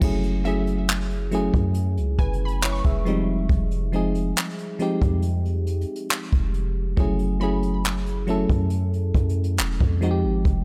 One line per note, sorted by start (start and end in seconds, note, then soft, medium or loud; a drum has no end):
0.01 1.50 F#1 loud
0.01 0.38 F#3 medium
0.01 0.38 A3 medium
0.01 0.39 C#4 medium
0.01 0.39 E4 medium
0.01 0.40 G#4 medium
0.01 kick loud
0.01 crash loud
0.23 closed hi-hat medium
0.44 1.18 F#3 medium
0.44 1.19 A3 medium
0.44 1.19 C#4 medium
0.44 1.20 E4 medium
0.44 1.20 G#4 loud
0.44 1.70 E5 medium
0.44 closed hi-hat medium
0.67 closed hi-hat medium
0.88 clap loud
0.88 closed hi-hat medium
1.10 closed hi-hat medium
1.31 2.79 F#3 medium
1.31 2.79 A3 medium
1.31 2.80 C#4 medium
1.31 2.20 E4 medium
1.31 2.20 G#4 loud
1.31 closed hi-hat medium
1.54 1.99 F#2 loud
1.54 kick medium
1.54 closed hi-hat soft
1.74 closed hi-hat medium
1.97 2.18 C#2 loud
1.97 closed hi-hat medium
2.19 2.82 F#1 loud
2.19 2.61 B4 medium
2.19 3.43 G#5 medium
2.19 kick medium
2.19 closed hi-hat medium
2.33 closed hi-hat medium
2.45 3.67 B5 medium
2.45 closed hi-hat medium
2.61 2.84 E4 medium
2.61 2.84 C#5 medium
2.61 clap loud
2.61 closed hi-hat medium
2.72 3.92 C#6 medium
2.84 3.47 F1 loud
2.84 3.26 G#4 medium
2.84 3.26 E5 medium
2.84 kick loud
2.84 closed hi-hat medium
3.05 3.79 F3 medium
3.05 3.81 G3 loud
3.05 3.80 G#3 medium
3.05 3.80 C4 medium
3.05 3.81 D#4 medium
3.05 closed hi-hat medium
3.49 4.33 F1 loud
3.49 kick loud
3.49 closed hi-hat medium
3.71 closed hi-hat medium
3.92 4.66 F3 medium
3.92 4.67 G#3 medium
3.92 4.67 C4 medium
3.92 4.67 D#4 medium
3.92 4.68 G#4 medium
3.92 closed hi-hat medium
4.15 closed hi-hat medium
4.36 clap loud
4.36 closed hi-hat medium
4.58 closed hi-hat medium
4.79 6.27 F3 medium
4.79 6.27 G#3 medium
4.79 6.28 C4 medium
4.79 6.28 D#4 medium
4.79 6.28 G4 loud
4.79 closed hi-hat medium
5.02 5.85 F2 loud
5.02 kick medium
5.02 closed hi-hat medium
5.22 closed hi-hat medium
5.45 closed hi-hat medium
5.67 closed hi-hat medium
5.81 closed hi-hat medium
5.96 closed hi-hat medium
6.11 clap loud
6.32 6.95 F1 loud
6.32 kick loud
6.32 closed hi-hat medium
6.54 closed hi-hat medium
6.97 8.46 F#1 loud
6.97 7.34 F#3 medium
6.97 7.34 A3 medium
6.97 7.35 C#4 medium
6.97 7.35 E4 medium
6.97 7.35 G#4 loud
6.97 kick loud
6.97 closed hi-hat medium
7.19 closed hi-hat medium
7.40 8.14 F#3 medium
7.40 8.15 A3 medium
7.40 8.15 C#4 medium
7.40 8.15 E4 medium
7.40 8.16 G#4 loud
7.40 8.65 B5 medium
7.40 closed hi-hat medium
7.63 closed hi-hat medium
7.84 clap loud
7.84 closed hi-hat medium
8.06 closed hi-hat medium
8.27 9.75 F#3 medium
8.27 9.75 A3 medium
8.27 9.75 C#4 medium
8.27 9.76 E4 medium
8.27 9.76 A4 loud
8.27 closed hi-hat medium
8.49 9.12 F#2 loud
8.49 kick medium
8.49 closed hi-hat medium
8.70 closed hi-hat medium
8.93 closed hi-hat medium
9.14 9.60 F#2 loud
9.14 kick medium
9.14 closed hi-hat medium
9.29 closed hi-hat medium
9.44 closed hi-hat medium
9.57 9.79 E1 loud
9.57 clap loud
9.57 closed hi-hat medium
9.80 10.25 F2 loud
9.80 kick loud
9.80 closed hi-hat medium
10.01 10.64 F3 medium
10.01 10.64 G#3 medium
10.01 10.64 C4 medium
10.01 10.64 D#4 medium
10.01 10.09 F#4 medium
10.01 closed hi-hat medium
10.11 10.64 G4 loud
10.24 10.44 G#1 medium
10.45 10.64 F1 loud
10.45 kick loud
10.45 closed hi-hat medium